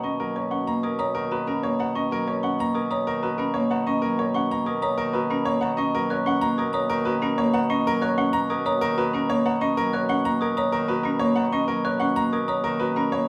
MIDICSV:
0, 0, Header, 1, 6, 480
1, 0, Start_track
1, 0, Key_signature, 5, "major"
1, 0, Tempo, 319149
1, 1021, Time_signature, 6, 2, 24, 8
1, 19973, End_track
2, 0, Start_track
2, 0, Title_t, "Glockenspiel"
2, 0, Program_c, 0, 9
2, 53, Note_on_c, 0, 85, 86
2, 371, Note_off_c, 0, 85, 0
2, 770, Note_on_c, 0, 85, 95
2, 1090, Note_off_c, 0, 85, 0
2, 1253, Note_on_c, 0, 87, 79
2, 1471, Note_off_c, 0, 87, 0
2, 1489, Note_on_c, 0, 87, 102
2, 1809, Note_off_c, 0, 87, 0
2, 1979, Note_on_c, 0, 82, 85
2, 2218, Note_on_c, 0, 83, 96
2, 2293, Note_off_c, 0, 82, 0
2, 2533, Note_off_c, 0, 83, 0
2, 2705, Note_on_c, 0, 82, 80
2, 2939, Note_on_c, 0, 85, 101
2, 3015, Note_off_c, 0, 82, 0
2, 3253, Note_off_c, 0, 85, 0
2, 3656, Note_on_c, 0, 85, 107
2, 3972, Note_off_c, 0, 85, 0
2, 4129, Note_on_c, 0, 87, 81
2, 4352, Note_off_c, 0, 87, 0
2, 4370, Note_on_c, 0, 87, 102
2, 4690, Note_off_c, 0, 87, 0
2, 4858, Note_on_c, 0, 82, 85
2, 5105, Note_on_c, 0, 83, 104
2, 5173, Note_off_c, 0, 82, 0
2, 5415, Note_off_c, 0, 83, 0
2, 5584, Note_on_c, 0, 82, 90
2, 5822, Note_on_c, 0, 85, 104
2, 5894, Note_off_c, 0, 82, 0
2, 6134, Note_off_c, 0, 85, 0
2, 6534, Note_on_c, 0, 85, 113
2, 6851, Note_off_c, 0, 85, 0
2, 7020, Note_on_c, 0, 87, 90
2, 7236, Note_off_c, 0, 87, 0
2, 7254, Note_on_c, 0, 87, 110
2, 7571, Note_off_c, 0, 87, 0
2, 7738, Note_on_c, 0, 82, 89
2, 7980, Note_on_c, 0, 83, 106
2, 8052, Note_off_c, 0, 82, 0
2, 8293, Note_off_c, 0, 83, 0
2, 8459, Note_on_c, 0, 82, 92
2, 8699, Note_on_c, 0, 85, 114
2, 8773, Note_off_c, 0, 82, 0
2, 9013, Note_off_c, 0, 85, 0
2, 9179, Note_on_c, 0, 90, 92
2, 9418, Note_on_c, 0, 85, 114
2, 9493, Note_off_c, 0, 90, 0
2, 9733, Note_off_c, 0, 85, 0
2, 9900, Note_on_c, 0, 87, 93
2, 10117, Note_off_c, 0, 87, 0
2, 10135, Note_on_c, 0, 87, 116
2, 10451, Note_off_c, 0, 87, 0
2, 10624, Note_on_c, 0, 82, 94
2, 10857, Note_on_c, 0, 83, 112
2, 10935, Note_off_c, 0, 82, 0
2, 11172, Note_off_c, 0, 83, 0
2, 11344, Note_on_c, 0, 82, 98
2, 11577, Note_on_c, 0, 85, 114
2, 11654, Note_off_c, 0, 82, 0
2, 11892, Note_off_c, 0, 85, 0
2, 12057, Note_on_c, 0, 90, 99
2, 12299, Note_on_c, 0, 85, 117
2, 12372, Note_off_c, 0, 90, 0
2, 12613, Note_off_c, 0, 85, 0
2, 12785, Note_on_c, 0, 87, 97
2, 13007, Note_off_c, 0, 87, 0
2, 13026, Note_on_c, 0, 87, 118
2, 13335, Note_off_c, 0, 87, 0
2, 13504, Note_on_c, 0, 82, 91
2, 13738, Note_on_c, 0, 83, 113
2, 13814, Note_off_c, 0, 82, 0
2, 14053, Note_off_c, 0, 83, 0
2, 14223, Note_on_c, 0, 82, 96
2, 14456, Note_on_c, 0, 85, 120
2, 14534, Note_off_c, 0, 82, 0
2, 14772, Note_off_c, 0, 85, 0
2, 14939, Note_on_c, 0, 90, 99
2, 15177, Note_on_c, 0, 85, 120
2, 15253, Note_off_c, 0, 90, 0
2, 15492, Note_off_c, 0, 85, 0
2, 15653, Note_on_c, 0, 87, 96
2, 15880, Note_off_c, 0, 87, 0
2, 15898, Note_on_c, 0, 87, 110
2, 16213, Note_off_c, 0, 87, 0
2, 16375, Note_on_c, 0, 82, 90
2, 16619, Note_on_c, 0, 83, 107
2, 16692, Note_off_c, 0, 82, 0
2, 16933, Note_off_c, 0, 83, 0
2, 17100, Note_on_c, 0, 82, 90
2, 17334, Note_on_c, 0, 85, 113
2, 17413, Note_off_c, 0, 82, 0
2, 17651, Note_off_c, 0, 85, 0
2, 17818, Note_on_c, 0, 90, 95
2, 18056, Note_on_c, 0, 85, 115
2, 18133, Note_off_c, 0, 90, 0
2, 18372, Note_off_c, 0, 85, 0
2, 18539, Note_on_c, 0, 87, 88
2, 18753, Note_off_c, 0, 87, 0
2, 18771, Note_on_c, 0, 87, 107
2, 19090, Note_off_c, 0, 87, 0
2, 19258, Note_on_c, 0, 82, 87
2, 19493, Note_on_c, 0, 83, 108
2, 19573, Note_off_c, 0, 82, 0
2, 19811, Note_off_c, 0, 83, 0
2, 19973, End_track
3, 0, Start_track
3, 0, Title_t, "Grand piano"
3, 0, Program_c, 1, 0
3, 57, Note_on_c, 1, 75, 69
3, 299, Note_on_c, 1, 70, 82
3, 372, Note_off_c, 1, 75, 0
3, 539, Note_on_c, 1, 73, 62
3, 613, Note_off_c, 1, 70, 0
3, 765, Note_on_c, 1, 78, 67
3, 853, Note_off_c, 1, 73, 0
3, 1013, Note_on_c, 1, 82, 96
3, 1088, Note_off_c, 1, 78, 0
3, 1261, Note_on_c, 1, 70, 79
3, 1331, Note_off_c, 1, 82, 0
3, 1486, Note_on_c, 1, 82, 88
3, 1574, Note_off_c, 1, 70, 0
3, 1724, Note_on_c, 1, 70, 99
3, 1808, Note_off_c, 1, 82, 0
3, 1981, Note_on_c, 1, 71, 85
3, 2048, Note_off_c, 1, 70, 0
3, 2220, Note_on_c, 1, 70, 87
3, 2294, Note_off_c, 1, 71, 0
3, 2457, Note_on_c, 1, 73, 93
3, 2533, Note_off_c, 1, 70, 0
3, 2707, Note_on_c, 1, 78, 82
3, 2772, Note_off_c, 1, 73, 0
3, 2942, Note_on_c, 1, 75, 84
3, 3016, Note_off_c, 1, 78, 0
3, 3192, Note_on_c, 1, 70, 102
3, 3254, Note_off_c, 1, 75, 0
3, 3424, Note_on_c, 1, 73, 75
3, 3497, Note_off_c, 1, 70, 0
3, 3666, Note_on_c, 1, 78, 81
3, 3735, Note_off_c, 1, 73, 0
3, 3914, Note_on_c, 1, 82, 108
3, 3975, Note_off_c, 1, 78, 0
3, 4136, Note_on_c, 1, 70, 81
3, 4218, Note_off_c, 1, 82, 0
3, 4372, Note_on_c, 1, 82, 86
3, 4452, Note_off_c, 1, 70, 0
3, 4619, Note_on_c, 1, 70, 102
3, 4690, Note_off_c, 1, 82, 0
3, 4854, Note_on_c, 1, 71, 85
3, 4933, Note_off_c, 1, 70, 0
3, 5083, Note_on_c, 1, 70, 90
3, 5171, Note_off_c, 1, 71, 0
3, 5321, Note_on_c, 1, 73, 100
3, 5407, Note_off_c, 1, 70, 0
3, 5573, Note_on_c, 1, 78, 79
3, 5646, Note_off_c, 1, 73, 0
3, 5814, Note_on_c, 1, 75, 87
3, 5891, Note_off_c, 1, 78, 0
3, 6044, Note_on_c, 1, 70, 100
3, 6131, Note_off_c, 1, 75, 0
3, 6300, Note_on_c, 1, 73, 83
3, 6367, Note_off_c, 1, 70, 0
3, 6552, Note_on_c, 1, 78, 83
3, 6613, Note_off_c, 1, 73, 0
3, 6788, Note_on_c, 1, 82, 100
3, 6857, Note_off_c, 1, 78, 0
3, 7011, Note_on_c, 1, 70, 88
3, 7096, Note_off_c, 1, 82, 0
3, 7252, Note_on_c, 1, 82, 96
3, 7330, Note_off_c, 1, 70, 0
3, 7484, Note_on_c, 1, 70, 110
3, 7570, Note_off_c, 1, 82, 0
3, 7720, Note_on_c, 1, 71, 91
3, 7808, Note_off_c, 1, 70, 0
3, 7973, Note_on_c, 1, 70, 91
3, 8046, Note_off_c, 1, 71, 0
3, 8203, Note_on_c, 1, 73, 107
3, 8291, Note_off_c, 1, 70, 0
3, 8437, Note_on_c, 1, 78, 87
3, 8527, Note_off_c, 1, 73, 0
3, 8679, Note_on_c, 1, 75, 94
3, 8765, Note_off_c, 1, 78, 0
3, 8943, Note_on_c, 1, 70, 107
3, 9006, Note_off_c, 1, 75, 0
3, 9186, Note_on_c, 1, 73, 82
3, 9254, Note_off_c, 1, 70, 0
3, 9432, Note_on_c, 1, 78, 93
3, 9495, Note_off_c, 1, 73, 0
3, 9647, Note_on_c, 1, 82, 113
3, 9737, Note_off_c, 1, 78, 0
3, 9907, Note_on_c, 1, 70, 95
3, 9969, Note_off_c, 1, 82, 0
3, 10120, Note_on_c, 1, 82, 99
3, 10215, Note_off_c, 1, 70, 0
3, 10371, Note_on_c, 1, 70, 113
3, 10446, Note_off_c, 1, 82, 0
3, 10607, Note_on_c, 1, 71, 100
3, 10690, Note_off_c, 1, 70, 0
3, 10865, Note_on_c, 1, 70, 99
3, 10929, Note_off_c, 1, 71, 0
3, 11098, Note_on_c, 1, 73, 109
3, 11175, Note_off_c, 1, 70, 0
3, 11333, Note_on_c, 1, 78, 100
3, 11413, Note_off_c, 1, 73, 0
3, 11582, Note_on_c, 1, 75, 98
3, 11651, Note_off_c, 1, 78, 0
3, 11838, Note_on_c, 1, 70, 121
3, 11894, Note_off_c, 1, 75, 0
3, 12065, Note_on_c, 1, 73, 98
3, 12139, Note_off_c, 1, 70, 0
3, 12299, Note_on_c, 1, 78, 90
3, 12375, Note_off_c, 1, 73, 0
3, 12529, Note_on_c, 1, 82, 124
3, 12613, Note_off_c, 1, 78, 0
3, 12782, Note_on_c, 1, 70, 95
3, 12849, Note_off_c, 1, 82, 0
3, 13027, Note_on_c, 1, 82, 103
3, 13094, Note_off_c, 1, 70, 0
3, 13256, Note_on_c, 1, 70, 122
3, 13336, Note_off_c, 1, 82, 0
3, 13502, Note_on_c, 1, 71, 103
3, 13572, Note_off_c, 1, 70, 0
3, 13753, Note_on_c, 1, 70, 95
3, 13814, Note_off_c, 1, 71, 0
3, 13981, Note_on_c, 1, 73, 113
3, 14058, Note_off_c, 1, 70, 0
3, 14224, Note_on_c, 1, 78, 91
3, 14294, Note_off_c, 1, 73, 0
3, 14457, Note_on_c, 1, 75, 96
3, 14535, Note_off_c, 1, 78, 0
3, 14699, Note_on_c, 1, 70, 122
3, 14772, Note_off_c, 1, 75, 0
3, 14951, Note_on_c, 1, 73, 94
3, 15013, Note_off_c, 1, 70, 0
3, 15180, Note_on_c, 1, 78, 96
3, 15257, Note_off_c, 1, 73, 0
3, 15419, Note_on_c, 1, 82, 114
3, 15493, Note_off_c, 1, 78, 0
3, 15669, Note_on_c, 1, 70, 93
3, 15733, Note_off_c, 1, 82, 0
3, 15898, Note_on_c, 1, 82, 102
3, 15976, Note_off_c, 1, 70, 0
3, 16128, Note_on_c, 1, 70, 112
3, 16213, Note_off_c, 1, 82, 0
3, 16368, Note_on_c, 1, 71, 100
3, 16449, Note_off_c, 1, 70, 0
3, 16594, Note_on_c, 1, 70, 96
3, 16689, Note_off_c, 1, 71, 0
3, 16836, Note_on_c, 1, 73, 112
3, 16924, Note_off_c, 1, 70, 0
3, 17079, Note_on_c, 1, 78, 91
3, 17165, Note_off_c, 1, 73, 0
3, 17332, Note_on_c, 1, 75, 93
3, 17406, Note_off_c, 1, 78, 0
3, 17564, Note_on_c, 1, 70, 104
3, 17650, Note_off_c, 1, 75, 0
3, 17817, Note_on_c, 1, 73, 91
3, 17888, Note_off_c, 1, 70, 0
3, 18042, Note_on_c, 1, 78, 90
3, 18132, Note_off_c, 1, 73, 0
3, 18291, Note_on_c, 1, 82, 117
3, 18367, Note_off_c, 1, 78, 0
3, 18542, Note_on_c, 1, 70, 86
3, 18610, Note_off_c, 1, 82, 0
3, 18769, Note_on_c, 1, 82, 92
3, 18854, Note_off_c, 1, 70, 0
3, 19008, Note_on_c, 1, 70, 113
3, 19090, Note_off_c, 1, 82, 0
3, 19244, Note_on_c, 1, 71, 95
3, 19329, Note_off_c, 1, 70, 0
3, 19502, Note_on_c, 1, 70, 90
3, 19568, Note_off_c, 1, 71, 0
3, 19734, Note_on_c, 1, 73, 107
3, 19814, Note_off_c, 1, 70, 0
3, 19973, Note_off_c, 1, 73, 0
3, 19973, End_track
4, 0, Start_track
4, 0, Title_t, "Marimba"
4, 0, Program_c, 2, 12
4, 64, Note_on_c, 2, 61, 81
4, 374, Note_off_c, 2, 61, 0
4, 540, Note_on_c, 2, 70, 71
4, 779, Note_on_c, 2, 61, 85
4, 853, Note_off_c, 2, 70, 0
4, 1093, Note_off_c, 2, 61, 0
4, 1257, Note_on_c, 2, 70, 86
4, 1498, Note_on_c, 2, 73, 101
4, 1572, Note_off_c, 2, 70, 0
4, 1812, Note_off_c, 2, 73, 0
4, 1975, Note_on_c, 2, 66, 81
4, 2209, Note_on_c, 2, 61, 96
4, 2291, Note_off_c, 2, 66, 0
4, 2529, Note_off_c, 2, 61, 0
4, 2699, Note_on_c, 2, 71, 81
4, 2939, Note_on_c, 2, 61, 90
4, 3013, Note_off_c, 2, 71, 0
4, 3253, Note_off_c, 2, 61, 0
4, 3423, Note_on_c, 2, 70, 85
4, 3662, Note_on_c, 2, 61, 98
4, 3734, Note_off_c, 2, 70, 0
4, 3974, Note_off_c, 2, 61, 0
4, 4140, Note_on_c, 2, 70, 83
4, 4383, Note_on_c, 2, 73, 102
4, 4453, Note_off_c, 2, 70, 0
4, 4694, Note_off_c, 2, 73, 0
4, 4864, Note_on_c, 2, 66, 81
4, 5096, Note_on_c, 2, 61, 98
4, 5175, Note_off_c, 2, 66, 0
4, 5412, Note_off_c, 2, 61, 0
4, 5579, Note_on_c, 2, 71, 87
4, 5820, Note_on_c, 2, 61, 103
4, 5893, Note_off_c, 2, 71, 0
4, 6133, Note_off_c, 2, 61, 0
4, 6302, Note_on_c, 2, 70, 87
4, 6542, Note_on_c, 2, 61, 103
4, 6614, Note_off_c, 2, 70, 0
4, 6854, Note_off_c, 2, 61, 0
4, 7016, Note_on_c, 2, 70, 88
4, 7259, Note_on_c, 2, 73, 104
4, 7332, Note_off_c, 2, 70, 0
4, 7573, Note_off_c, 2, 73, 0
4, 7741, Note_on_c, 2, 66, 92
4, 7980, Note_on_c, 2, 61, 104
4, 8054, Note_off_c, 2, 66, 0
4, 8293, Note_off_c, 2, 61, 0
4, 8461, Note_on_c, 2, 71, 98
4, 8698, Note_on_c, 2, 61, 110
4, 8773, Note_off_c, 2, 71, 0
4, 9013, Note_off_c, 2, 61, 0
4, 9178, Note_on_c, 2, 70, 91
4, 9417, Note_on_c, 2, 61, 118
4, 9493, Note_off_c, 2, 70, 0
4, 9732, Note_off_c, 2, 61, 0
4, 9896, Note_on_c, 2, 70, 94
4, 10139, Note_on_c, 2, 73, 111
4, 10212, Note_off_c, 2, 70, 0
4, 10453, Note_off_c, 2, 73, 0
4, 10617, Note_on_c, 2, 66, 92
4, 10863, Note_on_c, 2, 61, 110
4, 10932, Note_off_c, 2, 66, 0
4, 11174, Note_off_c, 2, 61, 0
4, 11346, Note_on_c, 2, 71, 99
4, 11583, Note_on_c, 2, 61, 111
4, 11655, Note_off_c, 2, 71, 0
4, 11894, Note_off_c, 2, 61, 0
4, 12062, Note_on_c, 2, 70, 101
4, 12300, Note_on_c, 2, 61, 123
4, 12374, Note_off_c, 2, 70, 0
4, 12613, Note_off_c, 2, 61, 0
4, 12785, Note_on_c, 2, 70, 100
4, 13021, Note_on_c, 2, 73, 116
4, 13095, Note_off_c, 2, 70, 0
4, 13334, Note_off_c, 2, 73, 0
4, 13501, Note_on_c, 2, 66, 97
4, 13746, Note_on_c, 2, 61, 112
4, 13814, Note_off_c, 2, 66, 0
4, 14055, Note_off_c, 2, 61, 0
4, 14221, Note_on_c, 2, 71, 92
4, 14463, Note_on_c, 2, 61, 115
4, 14534, Note_off_c, 2, 71, 0
4, 14774, Note_off_c, 2, 61, 0
4, 14943, Note_on_c, 2, 70, 100
4, 15184, Note_on_c, 2, 61, 119
4, 15254, Note_off_c, 2, 70, 0
4, 15495, Note_off_c, 2, 61, 0
4, 15667, Note_on_c, 2, 70, 100
4, 15910, Note_on_c, 2, 73, 119
4, 15976, Note_off_c, 2, 70, 0
4, 16217, Note_off_c, 2, 73, 0
4, 16387, Note_on_c, 2, 66, 96
4, 16624, Note_on_c, 2, 61, 110
4, 16695, Note_off_c, 2, 66, 0
4, 16935, Note_off_c, 2, 61, 0
4, 17104, Note_on_c, 2, 71, 90
4, 17342, Note_on_c, 2, 61, 110
4, 17415, Note_off_c, 2, 71, 0
4, 17654, Note_off_c, 2, 61, 0
4, 17824, Note_on_c, 2, 70, 98
4, 18063, Note_on_c, 2, 61, 118
4, 18135, Note_off_c, 2, 70, 0
4, 18374, Note_off_c, 2, 61, 0
4, 18544, Note_on_c, 2, 70, 94
4, 18785, Note_on_c, 2, 73, 105
4, 18854, Note_off_c, 2, 70, 0
4, 19095, Note_off_c, 2, 73, 0
4, 19262, Note_on_c, 2, 66, 85
4, 19499, Note_on_c, 2, 61, 104
4, 19574, Note_off_c, 2, 66, 0
4, 19813, Note_off_c, 2, 61, 0
4, 19973, End_track
5, 0, Start_track
5, 0, Title_t, "Harp"
5, 0, Program_c, 3, 46
5, 0, Note_on_c, 3, 51, 70
5, 0, Note_on_c, 3, 54, 87
5, 0, Note_on_c, 3, 58, 87
5, 0, Note_on_c, 3, 61, 71
5, 282, Note_off_c, 3, 54, 0
5, 300, Note_on_c, 3, 54, 82
5, 525, Note_off_c, 3, 61, 0
5, 543, Note_on_c, 3, 61, 73
5, 1000, Note_off_c, 3, 58, 0
5, 1019, Note_on_c, 3, 58, 87
5, 1236, Note_off_c, 3, 61, 0
5, 1254, Note_on_c, 3, 61, 83
5, 1705, Note_off_c, 3, 51, 0
5, 1723, Note_on_c, 3, 51, 94
5, 1948, Note_off_c, 3, 61, 0
5, 1966, Note_on_c, 3, 61, 80
5, 2430, Note_off_c, 3, 58, 0
5, 2448, Note_on_c, 3, 58, 97
5, 2670, Note_off_c, 3, 51, 0
5, 2688, Note_on_c, 3, 51, 85
5, 3157, Note_off_c, 3, 54, 0
5, 3175, Note_on_c, 3, 54, 107
5, 3392, Note_off_c, 3, 61, 0
5, 3410, Note_on_c, 3, 61, 91
5, 3873, Note_off_c, 3, 58, 0
5, 3891, Note_on_c, 3, 58, 98
5, 4125, Note_off_c, 3, 61, 0
5, 4143, Note_on_c, 3, 61, 81
5, 4604, Note_off_c, 3, 51, 0
5, 4622, Note_on_c, 3, 51, 99
5, 4845, Note_off_c, 3, 61, 0
5, 4863, Note_on_c, 3, 61, 80
5, 5323, Note_off_c, 3, 58, 0
5, 5341, Note_on_c, 3, 58, 107
5, 5565, Note_off_c, 3, 51, 0
5, 5583, Note_on_c, 3, 51, 89
5, 6055, Note_off_c, 3, 54, 0
5, 6073, Note_on_c, 3, 54, 100
5, 6285, Note_off_c, 3, 61, 0
5, 6303, Note_on_c, 3, 61, 86
5, 6769, Note_off_c, 3, 58, 0
5, 6787, Note_on_c, 3, 58, 107
5, 7003, Note_off_c, 3, 61, 0
5, 7021, Note_on_c, 3, 61, 91
5, 7474, Note_off_c, 3, 51, 0
5, 7492, Note_on_c, 3, 51, 115
5, 7732, Note_off_c, 3, 61, 0
5, 7750, Note_on_c, 3, 61, 96
5, 8199, Note_off_c, 3, 58, 0
5, 8217, Note_on_c, 3, 58, 111
5, 8440, Note_off_c, 3, 51, 0
5, 8458, Note_on_c, 3, 51, 99
5, 8925, Note_off_c, 3, 54, 0
5, 8943, Note_on_c, 3, 54, 109
5, 9176, Note_off_c, 3, 61, 0
5, 9194, Note_on_c, 3, 61, 91
5, 9645, Note_off_c, 3, 58, 0
5, 9663, Note_on_c, 3, 58, 108
5, 9895, Note_off_c, 3, 61, 0
5, 9913, Note_on_c, 3, 61, 87
5, 10367, Note_off_c, 3, 51, 0
5, 10385, Note_on_c, 3, 51, 116
5, 10606, Note_off_c, 3, 61, 0
5, 10624, Note_on_c, 3, 61, 101
5, 11081, Note_off_c, 3, 58, 0
5, 11099, Note_on_c, 3, 58, 117
5, 11326, Note_off_c, 3, 51, 0
5, 11344, Note_on_c, 3, 51, 100
5, 11810, Note_off_c, 3, 54, 0
5, 11829, Note_on_c, 3, 54, 122
5, 12048, Note_off_c, 3, 61, 0
5, 12066, Note_on_c, 3, 61, 99
5, 12528, Note_off_c, 3, 58, 0
5, 12546, Note_on_c, 3, 58, 101
5, 12775, Note_off_c, 3, 61, 0
5, 12793, Note_on_c, 3, 61, 98
5, 13252, Note_off_c, 3, 51, 0
5, 13270, Note_on_c, 3, 51, 120
5, 13483, Note_off_c, 3, 61, 0
5, 13501, Note_on_c, 3, 61, 99
5, 13966, Note_off_c, 3, 58, 0
5, 13984, Note_on_c, 3, 58, 119
5, 14200, Note_off_c, 3, 51, 0
5, 14219, Note_on_c, 3, 51, 100
5, 14688, Note_off_c, 3, 54, 0
5, 14706, Note_on_c, 3, 54, 125
5, 14917, Note_off_c, 3, 61, 0
5, 14935, Note_on_c, 3, 61, 102
5, 15395, Note_off_c, 3, 58, 0
5, 15413, Note_on_c, 3, 58, 106
5, 15642, Note_off_c, 3, 61, 0
5, 15660, Note_on_c, 3, 61, 94
5, 16122, Note_off_c, 3, 51, 0
5, 16140, Note_on_c, 3, 51, 120
5, 16357, Note_off_c, 3, 61, 0
5, 16375, Note_on_c, 3, 61, 101
5, 16839, Note_off_c, 3, 58, 0
5, 16857, Note_on_c, 3, 58, 120
5, 17074, Note_off_c, 3, 51, 0
5, 17092, Note_on_c, 3, 51, 96
5, 17560, Note_off_c, 3, 54, 0
5, 17578, Note_on_c, 3, 54, 116
5, 17803, Note_off_c, 3, 61, 0
5, 17821, Note_on_c, 3, 61, 98
5, 18285, Note_off_c, 3, 58, 0
5, 18303, Note_on_c, 3, 58, 108
5, 18528, Note_off_c, 3, 61, 0
5, 18546, Note_on_c, 3, 61, 89
5, 19008, Note_off_c, 3, 51, 0
5, 19026, Note_on_c, 3, 51, 117
5, 19239, Note_off_c, 3, 61, 0
5, 19257, Note_on_c, 3, 61, 89
5, 19726, Note_off_c, 3, 58, 0
5, 19744, Note_on_c, 3, 58, 108
5, 19962, Note_off_c, 3, 51, 0
5, 19973, Note_off_c, 3, 54, 0
5, 19973, Note_off_c, 3, 58, 0
5, 19973, Note_off_c, 3, 61, 0
5, 19973, End_track
6, 0, Start_track
6, 0, Title_t, "Bassoon"
6, 0, Program_c, 4, 70
6, 0, Note_on_c, 4, 47, 71
6, 19973, Note_off_c, 4, 47, 0
6, 19973, End_track
0, 0, End_of_file